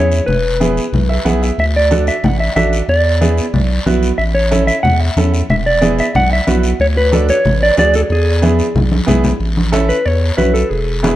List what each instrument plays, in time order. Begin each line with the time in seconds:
Already playing: sub bass E2, upright piano C#4 E4 G#4, clean electric guitar C#5
0.12 short guiro
0.26 sub bass E1, clean electric guitar B4, high conga, low conga, long guiro
0.60 upright piano B3 E4 G#4, high conga, short guiro
0.77 short guiro
0.92 sub bass B1, high conga, low conga, long guiro
1.09 upright piano E5
1.25 sub bass B1, upright piano B3 E4 G#4 F#5, high conga, short guiro
1.42 upright piano E5, short guiro
1.58 sub bass D2, clean electric guitar E5, high conga, long guiro
1.76 clean electric guitar D5
1.90 upright piano D4 F#4 A4, high conga, short guiro
2.07 clean electric guitar E5, short guiro
2.23 sub bass A1, clean electric guitar F#5, high conga, low conga, long guiro
2.40 clean electric guitar E5
2.56 sub bass A1, upright piano D4 F#4 A4, clean electric guitar E5, high conga, short guiro
2.73 short guiro
2.88 sub bass E2, clean electric guitar D5, high conga, long guiro
3.21 upright piano B3 E4 G#4, high conga, short guiro
3.38 short guiro
3.53 sub bass B1, high conga, low conga, long guiro
3.86 sub bass B1, upright piano B3 E4 F#4, high conga, short guiro
4.03 short guiro
4.18 sub bass A1, clean electric guitar E5, high conga, long guiro
4.35 clean electric guitar C#5
4.51 upright piano C#4 E4 A4, high conga, short guiro
4.67 clean electric guitar E5, short guiro
4.83 sub bass E2, clean electric guitar F#5, high conga, low conga, long guiro
5.00 clean electric guitar E5
5.16 sub bass E2, upright piano C#4 E4 A4, high conga, short guiro
5.34 short guiro
5.49 sub bass E1, clean electric guitar E5, high conga, low conga, long guiro
5.66 clean electric guitar D5
5.81 upright piano B3 E4 G#4, high conga, short guiro
5.99 clean electric guitar E5, short guiro
6.15 sub bass B1, clean electric guitar F#5, high conga, low conga, long guiro
6.33 clean electric guitar E5
6.47 sub bass B1, upright piano B3 E4 F#4, high conga, short guiro
6.63 short guiro
6.80 sub bass D2, clean electric guitar C#5, high conga, long guiro
6.97 clean electric guitar B4
7.12 upright piano D4 F#4 A4, high conga, short guiro
7.29 clean electric guitar C#5, short guiro
7.45 sub bass A1, high conga, low conga, long guiro
7.63 clean electric guitar D5
7.77 sub bass D2, upright piano D4 F#4 G#4, clean electric guitar D5, high conga, short guiro
7.94 clean electric guitar A4, short guiro
8.10 sub bass E2, clean electric guitar G#4, high conga, long guiro
8.42 upright piano B3 E4 G#4, high conga, short guiro
8.59 short guiro
8.75 sub bass B1, high conga, low conga, long guiro
8.92 high conga
9.06 sub bass B1, upright piano B3 E4 G#4, low conga, short guiro
9.24 low conga, short guiro
9.40 sub bass A1, high conga, long guiro
9.57 high conga
9.72 upright piano C#4 E4 A4, high conga, short guiro
9.89 clean electric guitar B4, short guiro
10.06 sub bass E2, clean electric guitar C#5, high conga, long guiro
10.37 sub bass B1, upright piano C#4 E4 F#4, clean electric guitar B4, high conga, short guiro
10.54 clean electric guitar A4, short guiro
10.69 sub bass E1, clean electric guitar G#4, high conga, long guiro
11.03 upright piano B3 E4 G#4, high conga, short guiro